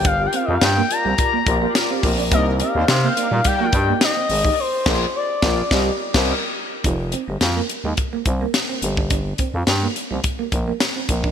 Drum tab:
CC |----------------|----------------|--x--------x----|----------------|
HH |x-x-x-x-x-x-x-o-|x-x-x-x-x-x-x-o-|----------------|x-x-x-x-x-x-x-x-|
SD |----o-------o---|----o-------o---|--o---o-o--o----|----o-------o---|
BD |o-------o-o---o-|o-------o-o----o|--o---o-o--o----|o-------o-o----o|

CC |----------------|
HH |x-x-x-x-x-x-x-x-|
SD |----o-------o---|
BD |o-o-----o-o---oo|